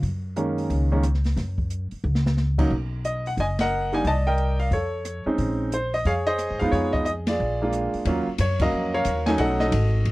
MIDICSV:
0, 0, Header, 1, 5, 480
1, 0, Start_track
1, 0, Key_signature, -5, "minor"
1, 0, Tempo, 334262
1, 49, Time_signature, 4, 2, 24, 8
1, 14528, End_track
2, 0, Start_track
2, 0, Title_t, "Grand piano"
2, 0, Program_c, 0, 0
2, 522, Note_on_c, 0, 56, 47
2, 524, Note_on_c, 0, 51, 51
2, 525, Note_on_c, 0, 58, 47
2, 538, Note_on_c, 0, 61, 57
2, 1250, Note_off_c, 0, 56, 0
2, 1251, Note_off_c, 0, 51, 0
2, 1251, Note_off_c, 0, 58, 0
2, 1258, Note_off_c, 0, 61, 0
2, 1315, Note_on_c, 0, 51, 57
2, 1322, Note_on_c, 0, 56, 53
2, 1323, Note_on_c, 0, 58, 50
2, 1328, Note_on_c, 0, 61, 67
2, 1471, Note_off_c, 0, 51, 0
2, 1475, Note_off_c, 0, 56, 0
2, 1475, Note_off_c, 0, 58, 0
2, 1478, Note_off_c, 0, 61, 0
2, 3708, Note_on_c, 0, 54, 64
2, 3711, Note_on_c, 0, 58, 55
2, 3714, Note_on_c, 0, 61, 58
2, 3716, Note_on_c, 0, 63, 68
2, 3868, Note_off_c, 0, 54, 0
2, 3869, Note_off_c, 0, 58, 0
2, 3871, Note_off_c, 0, 61, 0
2, 3872, Note_off_c, 0, 63, 0
2, 4380, Note_on_c, 0, 75, 67
2, 4659, Note_off_c, 0, 75, 0
2, 4698, Note_on_c, 0, 78, 71
2, 4770, Note_off_c, 0, 78, 0
2, 4884, Note_on_c, 0, 75, 61
2, 4884, Note_on_c, 0, 80, 81
2, 4955, Note_off_c, 0, 80, 0
2, 5156, Note_off_c, 0, 75, 0
2, 5178, Note_on_c, 0, 75, 61
2, 5181, Note_on_c, 0, 70, 62
2, 5181, Note_on_c, 0, 78, 99
2, 5637, Note_on_c, 0, 55, 51
2, 5643, Note_on_c, 0, 58, 47
2, 5643, Note_on_c, 0, 62, 49
2, 5647, Note_on_c, 0, 63, 60
2, 5662, Note_off_c, 0, 78, 0
2, 5665, Note_on_c, 0, 80, 85
2, 5776, Note_off_c, 0, 75, 0
2, 5778, Note_off_c, 0, 70, 0
2, 5793, Note_off_c, 0, 55, 0
2, 5796, Note_off_c, 0, 58, 0
2, 5796, Note_off_c, 0, 62, 0
2, 5799, Note_off_c, 0, 63, 0
2, 5830, Note_off_c, 0, 80, 0
2, 5848, Note_on_c, 0, 74, 70
2, 5848, Note_on_c, 0, 81, 96
2, 5853, Note_on_c, 0, 75, 70
2, 5920, Note_off_c, 0, 81, 0
2, 6120, Note_off_c, 0, 75, 0
2, 6130, Note_on_c, 0, 79, 88
2, 6135, Note_on_c, 0, 70, 66
2, 6142, Note_on_c, 0, 75, 61
2, 6570, Note_off_c, 0, 79, 0
2, 6599, Note_on_c, 0, 77, 75
2, 6733, Note_off_c, 0, 74, 0
2, 6735, Note_off_c, 0, 70, 0
2, 6739, Note_off_c, 0, 75, 0
2, 6778, Note_off_c, 0, 77, 0
2, 6792, Note_on_c, 0, 73, 67
2, 6800, Note_on_c, 0, 69, 47
2, 7514, Note_off_c, 0, 73, 0
2, 7556, Note_on_c, 0, 56, 54
2, 7561, Note_on_c, 0, 60, 47
2, 7564, Note_on_c, 0, 61, 49
2, 7566, Note_on_c, 0, 63, 60
2, 7689, Note_off_c, 0, 69, 0
2, 8177, Note_off_c, 0, 56, 0
2, 8179, Note_off_c, 0, 60, 0
2, 8181, Note_off_c, 0, 61, 0
2, 8182, Note_off_c, 0, 63, 0
2, 8237, Note_on_c, 0, 72, 75
2, 8510, Note_off_c, 0, 72, 0
2, 8529, Note_on_c, 0, 75, 78
2, 8686, Note_off_c, 0, 75, 0
2, 8706, Note_on_c, 0, 68, 70
2, 8709, Note_on_c, 0, 77, 90
2, 8713, Note_on_c, 0, 73, 66
2, 8781, Note_off_c, 0, 77, 0
2, 8985, Note_off_c, 0, 68, 0
2, 8998, Note_on_c, 0, 75, 98
2, 9007, Note_on_c, 0, 68, 67
2, 9012, Note_on_c, 0, 72, 68
2, 9445, Note_off_c, 0, 75, 0
2, 9469, Note_on_c, 0, 77, 82
2, 9491, Note_on_c, 0, 56, 64
2, 9497, Note_on_c, 0, 59, 62
2, 9499, Note_on_c, 0, 63, 56
2, 9499, Note_on_c, 0, 65, 67
2, 9606, Note_off_c, 0, 73, 0
2, 9612, Note_off_c, 0, 68, 0
2, 9614, Note_off_c, 0, 72, 0
2, 9636, Note_off_c, 0, 77, 0
2, 9643, Note_on_c, 0, 73, 83
2, 9666, Note_on_c, 0, 68, 57
2, 9947, Note_on_c, 0, 75, 76
2, 9963, Note_off_c, 0, 73, 0
2, 10105, Note_off_c, 0, 56, 0
2, 10106, Note_off_c, 0, 75, 0
2, 10107, Note_off_c, 0, 59, 0
2, 10109, Note_off_c, 0, 63, 0
2, 10109, Note_off_c, 0, 65, 0
2, 10127, Note_on_c, 0, 75, 78
2, 10199, Note_off_c, 0, 75, 0
2, 10450, Note_on_c, 0, 74, 80
2, 10460, Note_off_c, 0, 68, 0
2, 10468, Note_on_c, 0, 65, 46
2, 10482, Note_on_c, 0, 68, 47
2, 10929, Note_off_c, 0, 65, 0
2, 10936, Note_on_c, 0, 58, 53
2, 10937, Note_on_c, 0, 56, 53
2, 10942, Note_on_c, 0, 62, 51
2, 10950, Note_on_c, 0, 65, 66
2, 11053, Note_off_c, 0, 74, 0
2, 11362, Note_off_c, 0, 68, 0
2, 11546, Note_off_c, 0, 58, 0
2, 11547, Note_off_c, 0, 56, 0
2, 11549, Note_off_c, 0, 62, 0
2, 11553, Note_off_c, 0, 65, 0
2, 11588, Note_on_c, 0, 54, 56
2, 11588, Note_on_c, 0, 58, 55
2, 11589, Note_on_c, 0, 61, 52
2, 11599, Note_on_c, 0, 65, 66
2, 11855, Note_off_c, 0, 54, 0
2, 11855, Note_off_c, 0, 58, 0
2, 11856, Note_off_c, 0, 61, 0
2, 11861, Note_off_c, 0, 65, 0
2, 12069, Note_on_c, 0, 73, 79
2, 12345, Note_off_c, 0, 73, 0
2, 12367, Note_on_c, 0, 70, 55
2, 12371, Note_on_c, 0, 66, 55
2, 12372, Note_on_c, 0, 54, 57
2, 12372, Note_on_c, 0, 58, 48
2, 12374, Note_on_c, 0, 77, 64
2, 12377, Note_on_c, 0, 61, 52
2, 12380, Note_on_c, 0, 75, 80
2, 12815, Note_off_c, 0, 75, 0
2, 12823, Note_off_c, 0, 77, 0
2, 12824, Note_off_c, 0, 70, 0
2, 12841, Note_on_c, 0, 73, 72
2, 12844, Note_on_c, 0, 77, 92
2, 12845, Note_on_c, 0, 70, 70
2, 12983, Note_off_c, 0, 54, 0
2, 12983, Note_off_c, 0, 58, 0
2, 12985, Note_off_c, 0, 61, 0
2, 13264, Note_off_c, 0, 66, 0
2, 13301, Note_on_c, 0, 80, 87
2, 13313, Note_on_c, 0, 54, 69
2, 13320, Note_on_c, 0, 57, 61
2, 13321, Note_on_c, 0, 61, 61
2, 13326, Note_on_c, 0, 63, 73
2, 13333, Note_off_c, 0, 77, 0
2, 13446, Note_off_c, 0, 73, 0
2, 13448, Note_off_c, 0, 70, 0
2, 13469, Note_off_c, 0, 80, 0
2, 13481, Note_on_c, 0, 78, 98
2, 13499, Note_on_c, 0, 75, 68
2, 13502, Note_on_c, 0, 69, 73
2, 13767, Note_off_c, 0, 75, 0
2, 13788, Note_on_c, 0, 75, 82
2, 13797, Note_off_c, 0, 69, 0
2, 13799, Note_off_c, 0, 78, 0
2, 13819, Note_on_c, 0, 69, 58
2, 13824, Note_on_c, 0, 66, 56
2, 13932, Note_off_c, 0, 54, 0
2, 13935, Note_off_c, 0, 57, 0
2, 13936, Note_off_c, 0, 61, 0
2, 13938, Note_off_c, 0, 63, 0
2, 14528, Note_off_c, 0, 66, 0
2, 14528, Note_off_c, 0, 69, 0
2, 14528, Note_off_c, 0, 75, 0
2, 14528, End_track
3, 0, Start_track
3, 0, Title_t, "Upright bass"
3, 0, Program_c, 1, 32
3, 36, Note_on_c, 1, 42, 76
3, 954, Note_off_c, 1, 42, 0
3, 1002, Note_on_c, 1, 37, 77
3, 1917, Note_off_c, 1, 37, 0
3, 1960, Note_on_c, 1, 42, 74
3, 2695, Note_off_c, 1, 42, 0
3, 2925, Note_on_c, 1, 37, 79
3, 3839, Note_off_c, 1, 37, 0
3, 3884, Note_on_c, 1, 35, 78
3, 4799, Note_off_c, 1, 35, 0
3, 4843, Note_on_c, 1, 30, 77
3, 5759, Note_off_c, 1, 30, 0
3, 5805, Note_on_c, 1, 36, 77
3, 6720, Note_off_c, 1, 36, 0
3, 6763, Note_on_c, 1, 41, 76
3, 7499, Note_off_c, 1, 41, 0
3, 7725, Note_on_c, 1, 34, 75
3, 8641, Note_off_c, 1, 34, 0
3, 8689, Note_on_c, 1, 41, 77
3, 9286, Note_off_c, 1, 41, 0
3, 9340, Note_on_c, 1, 44, 59
3, 9486, Note_off_c, 1, 44, 0
3, 9497, Note_on_c, 1, 40, 64
3, 9644, Note_off_c, 1, 40, 0
3, 9652, Note_on_c, 1, 41, 84
3, 10564, Note_off_c, 1, 41, 0
3, 10625, Note_on_c, 1, 34, 77
3, 11350, Note_off_c, 1, 34, 0
3, 11566, Note_on_c, 1, 39, 83
3, 11853, Note_off_c, 1, 39, 0
3, 12041, Note_on_c, 1, 42, 85
3, 12511, Note_off_c, 1, 42, 0
3, 12521, Note_on_c, 1, 41, 77
3, 12990, Note_off_c, 1, 41, 0
3, 13001, Note_on_c, 1, 39, 82
3, 13462, Note_off_c, 1, 39, 0
3, 13471, Note_on_c, 1, 35, 82
3, 13944, Note_off_c, 1, 35, 0
3, 13954, Note_on_c, 1, 32, 88
3, 14425, Note_off_c, 1, 32, 0
3, 14434, Note_on_c, 1, 33, 83
3, 14528, Note_off_c, 1, 33, 0
3, 14528, End_track
4, 0, Start_track
4, 0, Title_t, "Muted upright bass strokes"
4, 2758, Note_on_c, 9, 29, 36
4, 2901, Note_off_c, 9, 29, 0
4, 7553, Note_on_c, 9, 29, 38
4, 7697, Note_off_c, 9, 29, 0
4, 11399, Note_on_c, 9, 29, 34
4, 11542, Note_off_c, 9, 29, 0
4, 11882, Note_on_c, 9, 29, 36
4, 12025, Note_off_c, 9, 29, 0
4, 14528, End_track
5, 0, Start_track
5, 0, Title_t, "Drums"
5, 44, Note_on_c, 9, 46, 39
5, 45, Note_on_c, 9, 36, 32
5, 187, Note_off_c, 9, 46, 0
5, 188, Note_off_c, 9, 36, 0
5, 521, Note_on_c, 9, 42, 49
5, 664, Note_off_c, 9, 42, 0
5, 834, Note_on_c, 9, 46, 35
5, 977, Note_off_c, 9, 46, 0
5, 1006, Note_on_c, 9, 36, 27
5, 1008, Note_on_c, 9, 46, 39
5, 1150, Note_off_c, 9, 36, 0
5, 1152, Note_off_c, 9, 46, 0
5, 1482, Note_on_c, 9, 42, 44
5, 1484, Note_on_c, 9, 37, 53
5, 1626, Note_off_c, 9, 42, 0
5, 1627, Note_off_c, 9, 37, 0
5, 1641, Note_on_c, 9, 38, 24
5, 1784, Note_on_c, 9, 46, 34
5, 1785, Note_off_c, 9, 38, 0
5, 1800, Note_on_c, 9, 38, 38
5, 1927, Note_off_c, 9, 46, 0
5, 1944, Note_off_c, 9, 38, 0
5, 1963, Note_on_c, 9, 36, 30
5, 1971, Note_on_c, 9, 46, 41
5, 1972, Note_on_c, 9, 38, 35
5, 2107, Note_off_c, 9, 36, 0
5, 2114, Note_off_c, 9, 46, 0
5, 2116, Note_off_c, 9, 38, 0
5, 2268, Note_on_c, 9, 36, 49
5, 2411, Note_off_c, 9, 36, 0
5, 2445, Note_on_c, 9, 42, 49
5, 2588, Note_off_c, 9, 42, 0
5, 2745, Note_on_c, 9, 46, 33
5, 2888, Note_off_c, 9, 46, 0
5, 3090, Note_on_c, 9, 38, 51
5, 3233, Note_off_c, 9, 38, 0
5, 3249, Note_on_c, 9, 38, 68
5, 3393, Note_off_c, 9, 38, 0
5, 3405, Note_on_c, 9, 38, 47
5, 3549, Note_off_c, 9, 38, 0
5, 3710, Note_on_c, 9, 36, 67
5, 3714, Note_on_c, 9, 49, 65
5, 3854, Note_off_c, 9, 36, 0
5, 3858, Note_off_c, 9, 49, 0
5, 3884, Note_on_c, 9, 36, 31
5, 4028, Note_off_c, 9, 36, 0
5, 4374, Note_on_c, 9, 42, 47
5, 4518, Note_off_c, 9, 42, 0
5, 4681, Note_on_c, 9, 46, 34
5, 4824, Note_off_c, 9, 46, 0
5, 4845, Note_on_c, 9, 36, 29
5, 4847, Note_on_c, 9, 46, 37
5, 4989, Note_off_c, 9, 36, 0
5, 4990, Note_off_c, 9, 46, 0
5, 5152, Note_on_c, 9, 51, 57
5, 5153, Note_on_c, 9, 38, 66
5, 5295, Note_off_c, 9, 51, 0
5, 5297, Note_off_c, 9, 38, 0
5, 5637, Note_on_c, 9, 46, 35
5, 5781, Note_off_c, 9, 46, 0
5, 5808, Note_on_c, 9, 36, 30
5, 5809, Note_on_c, 9, 46, 38
5, 5952, Note_off_c, 9, 36, 0
5, 5953, Note_off_c, 9, 46, 0
5, 6287, Note_on_c, 9, 42, 49
5, 6431, Note_off_c, 9, 42, 0
5, 6595, Note_on_c, 9, 46, 34
5, 6739, Note_off_c, 9, 46, 0
5, 6770, Note_on_c, 9, 36, 29
5, 6773, Note_on_c, 9, 46, 42
5, 6914, Note_off_c, 9, 36, 0
5, 6917, Note_off_c, 9, 46, 0
5, 7251, Note_on_c, 9, 42, 47
5, 7252, Note_on_c, 9, 37, 50
5, 7394, Note_off_c, 9, 42, 0
5, 7396, Note_off_c, 9, 37, 0
5, 7726, Note_on_c, 9, 46, 39
5, 7730, Note_on_c, 9, 36, 30
5, 7870, Note_off_c, 9, 46, 0
5, 7873, Note_off_c, 9, 36, 0
5, 8214, Note_on_c, 9, 42, 50
5, 8358, Note_off_c, 9, 42, 0
5, 8525, Note_on_c, 9, 46, 38
5, 8669, Note_off_c, 9, 46, 0
5, 8689, Note_on_c, 9, 46, 38
5, 8692, Note_on_c, 9, 36, 29
5, 8833, Note_off_c, 9, 46, 0
5, 8836, Note_off_c, 9, 36, 0
5, 9167, Note_on_c, 9, 42, 47
5, 9169, Note_on_c, 9, 37, 52
5, 9311, Note_off_c, 9, 42, 0
5, 9312, Note_off_c, 9, 37, 0
5, 9476, Note_on_c, 9, 46, 35
5, 9620, Note_off_c, 9, 46, 0
5, 9657, Note_on_c, 9, 36, 30
5, 9660, Note_on_c, 9, 46, 39
5, 9800, Note_off_c, 9, 36, 0
5, 9803, Note_off_c, 9, 46, 0
5, 9962, Note_on_c, 9, 36, 43
5, 10106, Note_off_c, 9, 36, 0
5, 10136, Note_on_c, 9, 42, 50
5, 10279, Note_off_c, 9, 42, 0
5, 10435, Note_on_c, 9, 51, 61
5, 10437, Note_on_c, 9, 38, 72
5, 10579, Note_off_c, 9, 51, 0
5, 10580, Note_off_c, 9, 38, 0
5, 11093, Note_on_c, 9, 42, 47
5, 11094, Note_on_c, 9, 37, 49
5, 11237, Note_off_c, 9, 42, 0
5, 11238, Note_off_c, 9, 37, 0
5, 11395, Note_on_c, 9, 46, 35
5, 11539, Note_off_c, 9, 46, 0
5, 11564, Note_on_c, 9, 51, 59
5, 11566, Note_on_c, 9, 36, 26
5, 11707, Note_off_c, 9, 51, 0
5, 11709, Note_off_c, 9, 36, 0
5, 12037, Note_on_c, 9, 44, 54
5, 12037, Note_on_c, 9, 51, 78
5, 12044, Note_on_c, 9, 36, 26
5, 12180, Note_off_c, 9, 44, 0
5, 12180, Note_off_c, 9, 51, 0
5, 12187, Note_off_c, 9, 36, 0
5, 12342, Note_on_c, 9, 49, 72
5, 12347, Note_on_c, 9, 36, 83
5, 12485, Note_off_c, 9, 49, 0
5, 12491, Note_off_c, 9, 36, 0
5, 12990, Note_on_c, 9, 44, 56
5, 12990, Note_on_c, 9, 51, 56
5, 13000, Note_on_c, 9, 36, 18
5, 13133, Note_off_c, 9, 44, 0
5, 13133, Note_off_c, 9, 51, 0
5, 13144, Note_off_c, 9, 36, 0
5, 13303, Note_on_c, 9, 51, 46
5, 13305, Note_on_c, 9, 38, 59
5, 13447, Note_off_c, 9, 51, 0
5, 13448, Note_off_c, 9, 38, 0
5, 13469, Note_on_c, 9, 51, 64
5, 13476, Note_on_c, 9, 36, 21
5, 13612, Note_off_c, 9, 51, 0
5, 13619, Note_off_c, 9, 36, 0
5, 13780, Note_on_c, 9, 38, 38
5, 13924, Note_off_c, 9, 38, 0
5, 13958, Note_on_c, 9, 44, 50
5, 13958, Note_on_c, 9, 51, 73
5, 13960, Note_on_c, 9, 36, 23
5, 14102, Note_off_c, 9, 44, 0
5, 14102, Note_off_c, 9, 51, 0
5, 14104, Note_off_c, 9, 36, 0
5, 14436, Note_on_c, 9, 51, 53
5, 14440, Note_on_c, 9, 36, 19
5, 14528, Note_off_c, 9, 36, 0
5, 14528, Note_off_c, 9, 51, 0
5, 14528, End_track
0, 0, End_of_file